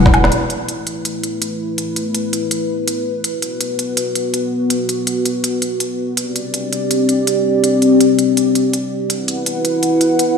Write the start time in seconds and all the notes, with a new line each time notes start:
Already playing: E1 E4 B4 F#5
0.06 kick, snare
0.14 closed hi-hat, low woodblock
0.24 snare
0.31 A3 E4 B4, closed hi-hat
0.50 closed hi-hat
0.69 closed hi-hat
0.87 closed hi-hat
1.05 closed hi-hat
1.23 closed hi-hat
1.42 closed hi-hat
1.78 closed hi-hat
1.96 closed hi-hat
2.15 closed hi-hat
2.33 closed hi-hat
2.51 closed hi-hat
2.88 closed hi-hat
3.24 B3 F#4, closed hi-hat
3.42 closed hi-hat
3.61 closed hi-hat
3.79 closed hi-hat
3.97 closed hi-hat
4.15 closed hi-hat
4.34 closed hi-hat
4.70 closed hi-hat
4.89 closed hi-hat
5.07 closed hi-hat
5.25 closed hi-hat
5.44 closed hi-hat
5.62 closed hi-hat
5.80 closed hi-hat
6.17 C4 G4 D5, closed hi-hat
6.36 closed hi-hat
6.54 closed hi-hat
6.73 closed hi-hat
6.91 closed hi-hat
7.09 closed hi-hat
7.27 closed hi-hat
7.64 closed hi-hat
7.82 closed hi-hat
8.01 closed hi-hat
8.19 closed hi-hat
8.37 closed hi-hat
8.55 closed hi-hat
8.73 closed hi-hat
9.10 E4 B4 F#5, closed hi-hat
9.28 closed hi-hat
9.46 closed hi-hat
9.65 closed hi-hat
9.83 closed hi-hat
10.01 closed hi-hat
10.19 closed hi-hat